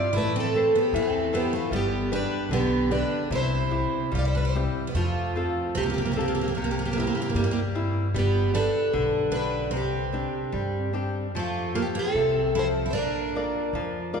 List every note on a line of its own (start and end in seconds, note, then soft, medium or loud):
0.00 0.13 G3 medium
0.00 0.13 F4 medium
0.00 0.13 D5 medium
0.13 0.66 A1 medium
0.13 0.92 A3 medium
0.13 0.32 E4 medium
0.18 0.35 B4 medium
0.36 0.72 C4 medium
0.40 0.78 A4 medium
0.56 1.18 A4 soft
0.56 1.18 B4 soft
0.56 1.18 C5 soft
0.75 0.93 B3 medium
0.75 0.96 G4 medium
0.93 1.44 E2 medium
0.93 1.70 E3 medium
0.93 1.31 C4 medium
0.97 1.35 A4 medium
1.33 1.52 B3 medium
1.33 1.53 G4 medium
1.33 1.64 A4 soft
1.33 1.64 B4 soft
1.33 1.64 C5 soft
1.53 1.71 A3 medium
1.53 1.72 F4 medium
1.71 2.22 G1 medium
1.71 2.48 G3 medium
1.71 2.09 B3 medium
1.76 2.14 G4 medium
2.12 2.49 D4 medium
2.12 2.75 G4 soft
2.12 2.75 B4 soft
2.12 2.75 D5 soft
2.16 2.54 B4 medium
2.49 3.01 B1 medium
2.49 3.28 D3 medium
2.49 2.89 B3 medium
2.54 2.93 G4 medium
2.91 3.28 D4 medium
2.91 3.22 G4 soft
2.91 3.22 B4 soft
2.91 3.23 D5 soft
2.95 3.30 B4 medium
3.30 3.83 C2 medium
3.30 4.09 C3 medium
3.30 4.13 E4 medium
3.35 4.14 C5 medium
3.71 4.37 C4 soft
3.71 4.37 E4 soft
3.71 4.37 G4 soft
4.12 4.66 C2 medium
4.12 4.91 G3 medium
4.12 4.24 F4 medium
4.19 4.26 D5 medium
4.25 4.34 E4 soft
4.25 4.35 C5 medium
4.35 4.43 D4 soft
4.35 4.45 B4 medium
4.45 4.53 E4 soft
4.49 4.55 C5 medium
4.55 4.87 C4 soft
4.55 4.87 E4 soft
4.55 4.88 G4 soft
4.87 4.94 B3 soft
4.87 4.96 G4 medium
4.94 5.47 F2 medium
4.94 5.74 F3 medium
4.94 5.72 A3 medium
4.94 5.73 F4 medium
5.36 6.00 C4 soft
5.36 6.00 F4 soft
5.36 6.01 A4 soft
5.75 6.56 C#2 medium
5.75 6.54 C3 medium
5.75 5.82 C4 medium
5.75 5.84 G4 medium
5.83 5.89 A#3 medium
5.83 5.92 G4 medium
5.90 5.97 A#3 medium
5.90 5.99 G4 medium
5.98 6.04 A#3 soft
5.98 6.07 G4 medium
6.06 6.12 A#3 soft
6.12 6.19 A#3 soft
6.12 6.16 G4 medium
6.16 6.48 C4 soft
6.16 6.48 F4 soft
6.16 6.48 A4 soft
6.20 6.27 A#3 soft
6.20 6.24 G4 medium
6.26 6.33 A#3 soft
6.26 6.30 G4 medium
6.35 6.40 A#3 soft
6.35 6.39 G4 soft
6.41 6.47 A#3 soft
6.41 6.47 G4 medium
6.48 6.54 A#3 soft
6.48 6.53 G4 medium
6.55 7.07 C2 medium
6.55 7.33 C3 medium
6.55 6.63 A#3 soft
6.55 6.61 G4 medium
6.62 6.70 A#3 soft
6.62 6.67 G4 medium
6.71 6.78 A#3 soft
6.71 6.75 G4 medium
6.78 6.84 A#3 medium
6.78 6.82 G4 medium
6.85 6.92 A#3 soft
6.85 6.90 G4 medium
6.92 6.98 A#3 medium
6.92 6.96 G4 medium
6.96 7.06 A#3 soft
6.96 7.60 C4 soft
6.96 7.60 E4 soft
6.96 7.60 G4 soft
6.96 7.02 G4 medium
7.03 7.14 A#3 medium
7.03 7.09 G4 medium
7.10 7.16 G4 medium
7.15 7.20 A#3 soft
7.15 7.22 G4 medium
7.22 7.28 A#3 medium
7.22 7.30 G4 medium
7.30 7.35 A#3 soft
7.34 8.16 G2 medium
7.34 8.12 G3 medium
7.34 7.43 A#3 medium
7.34 7.38 G4 medium
7.39 7.45 G4 medium
7.44 7.50 A#3 medium
7.44 7.52 G4 medium
7.51 7.59 A#3 medium
7.51 7.60 G4 medium
7.75 8.06 C4 soft
7.75 8.06 E4 soft
7.75 8.07 G4 soft
8.14 8.65 G1 medium
8.14 8.53 G3 medium
8.14 8.52 B3 medium
8.19 8.57 G4 medium
8.54 9.17 D4 soft
8.54 9.29 D4 medium
8.54 9.17 G4 soft
8.54 9.29 A4 medium
8.54 9.18 B4 soft
8.93 9.73 B1 medium
8.93 9.71 D3 medium
9.31 9.64 D4 soft
9.31 9.69 D4 medium
9.31 9.64 G4 soft
9.31 9.64 B4 soft
9.36 9.71 B4 medium
9.71 10.25 C2 medium
9.71 10.51 C3 medium
9.71 10.89 C4 medium
9.77 10.92 G4 medium
10.12 10.77 C4 soft
10.12 10.78 D4 soft
10.12 10.78 G4 soft
10.52 11.34 G2 medium
10.52 11.31 G3 medium
10.93 11.26 C4 soft
10.93 11.26 D4 soft
10.93 11.26 G4 soft
11.34 11.87 F2 medium
11.34 12.13 F3 medium
11.34 11.73 A3 medium
11.39 11.78 F4 medium
11.75 11.81 A#3 medium
11.75 12.39 F4 soft
11.75 12.39 G4 soft
11.75 12.39 A4 soft
11.82 11.87 G4 medium
11.95 12.51 C4 medium
11.99 12.58 A4 medium
12.14 12.93 C2 medium
12.14 12.92 C3 medium
12.55 12.87 F3 soft
12.55 12.64 E4 medium
12.55 12.88 G4 soft
12.55 12.88 A4 soft
12.59 12.67 C5 medium
12.86 12.93 E4 soft
12.91 13.45 A#1 medium
12.91 14.09 D4 medium
12.91 12.94 C5 medium
12.95 13.72 A#3 medium
12.95 14.10 A#4 medium
13.35 13.99 F4 soft
13.35 13.99 A#4 soft
13.35 13.99 D5 soft
13.73 14.20 F2 medium
13.73 14.20 F3 medium
14.13 14.20 F4 soft
14.13 14.20 A#4 soft
14.13 14.20 D5 soft